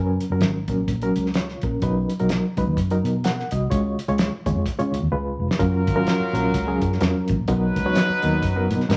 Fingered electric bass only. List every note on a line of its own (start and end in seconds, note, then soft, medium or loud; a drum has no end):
0.00 0.16 F#1 loud
0.30 0.41 F#1 medium
0.41 0.64 G#1 medium
0.68 0.84 A#1 medium
0.87 1.11 A#1 medium
1.16 1.55 C#2 medium
1.63 1.79 A#1 medium
1.82 2.05 B1 loud
2.21 2.40 B1 medium
2.57 2.65 C#2 medium
2.67 2.75 D#2 medium
2.77 3.00 F#1 loud
3.04 3.43 B2 medium
3.52 3.68 C2 loud
3.72 3.94 C#2 loud
4.08 4.28 C#2 loud
4.46 4.54 D#2 medium
4.55 4.63 F2 medium
4.80 4.91 C#3 medium
4.92 5.00 C#2 medium
5.02 5.10 D#2 medium
5.12 5.35 C#2 loud
5.40 5.48 F1 medium
5.60 5.88 F#1 loud
5.88 6.04 G#1 medium
6.20 muted fingered electric bass stroke soft
6.33 6.50 A#1 loud
6.54 6.77 C#2 medium
6.82 6.98 F#2 medium
7.01 7.13 F2 loud
7.30 7.37 A1 loud
7.39 7.47 A#1 medium
7.48 7.71 B1 loud
7.76 7.92 C#2 medium
8.09 muted fingered electric bass stroke soft
8.24 8.39 D#2 medium
8.42 8.71 F#1 loud
8.70 8.86 B2 loud
8.89 8.97 G#2 loud